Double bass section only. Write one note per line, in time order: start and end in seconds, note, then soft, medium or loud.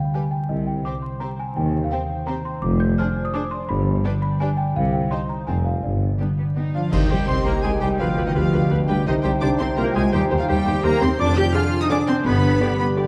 0.50 0.80 C2 medium
1.57 1.87 D#2 medium
2.63 2.92 F1 loud
3.70 3.99 G1 medium
4.76 5.06 C2 medium
5.47 5.77 F1 medium
5.84 6.14 G1 medium
6.92 6.99 C2 medium
7.10 7.17 C2 medium
7.28 7.35 C2 medium
7.46 7.53 C2 medium
7.64 7.71 C2 medium
7.82 7.89 C2 medium
8.00 8.07 D2 medium
8.17 8.25 D2 medium
8.36 8.43 D2 medium
8.53 8.60 D2 medium
8.71 8.78 D2 medium
8.89 8.96 D2 medium
9.07 9.14 C2 medium
9.24 9.31 C2 medium
9.43 9.50 C2 medium
9.60 9.67 C2 medium
9.78 9.85 C2 medium
9.96 10.03 C2 medium
10.13 10.20 D#2 medium
10.31 10.38 D#2 medium
10.49 10.56 D#2 medium
10.67 10.74 D#2 medium
10.84 10.91 D#2 medium
11.02 11.09 D#2 medium
11.20 11.49 F2 medium
12.26 12.55 G1 medium